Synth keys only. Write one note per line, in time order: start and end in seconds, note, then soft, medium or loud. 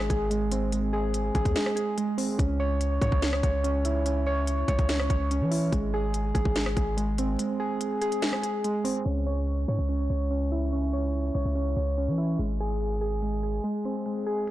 0.00 0.29 G#3 medium
0.10 0.92 G#4 medium
0.30 0.71 G#3 loud
0.52 1.77 C4 medium
0.73 1.55 G#3 medium
0.93 1.34 G#4 medium
1.35 1.75 G#4 loud
1.56 1.96 G#3 medium
1.76 2.39 G#4 medium
1.98 2.39 G#3 medium
2.18 2.39 C4 medium
2.38 3.21 C#4 medium
2.60 3.01 C#5 medium
3.02 3.42 C#5 loud
3.22 3.63 C#4 medium
3.43 4.25 C#5 medium
3.64 4.05 C#4 medium
3.85 5.10 E4 medium
4.06 4.87 C#4 medium
4.27 4.67 C#5 medium
4.68 5.09 C#5 loud
4.89 5.30 C#4 medium
5.10 5.72 C#5 medium
5.31 5.73 C#4 medium
5.51 5.72 E4 medium
5.72 6.54 G#3 medium
5.94 6.33 G#4 medium
6.35 6.75 G#4 medium
6.56 6.96 G#3 medium
6.77 7.59 G#4 medium
6.97 7.38 G#3 loud
7.18 8.43 C4 medium
7.39 8.21 G#3 medium
7.60 8.00 G#4 medium
8.02 8.41 G#4 loud
8.23 8.63 G#3 medium
8.43 9.05 G#4 medium
8.64 9.06 G#3 medium
8.84 9.06 C4 medium
9.05 9.88 C#4 medium
9.26 9.67 C#5 medium
9.69 10.09 C#5 medium
9.89 10.29 C#4 medium
10.10 10.92 C#5 medium
10.31 10.71 C#4 medium
10.52 11.77 E4 medium
10.72 11.54 C#4 medium
10.93 11.33 C#5 medium
11.35 11.75 C#5 medium
11.55 11.96 C#4 medium
11.77 12.39 C#5 medium
11.98 12.39 C#4 medium
12.18 12.39 E4 medium
12.39 13.21 G#3 medium
12.60 13.00 G#4 medium
13.01 13.42 G#4 medium
13.22 13.63 G#3 medium
13.43 14.25 G#4 medium
13.64 14.05 G#3 medium
13.85 14.51 C4 medium
14.06 14.51 G#3 medium
14.26 14.51 G#4 medium